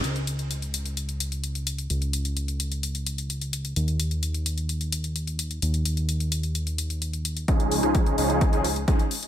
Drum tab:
HH |xxxxxxxxxxxxxxxx|xxxxxxxxxxxxxxxx|xxxxxxxxxxxxxxxx|xxxxxxxxxxxxxxxx|
SD |----------------|----------------|----------------|----------------|
BD |----------------|----------------|----------------|----------------|

HH |xxoxxxoxxxoxxxox|
SD |---r------------|
BD |o---o---o---o---|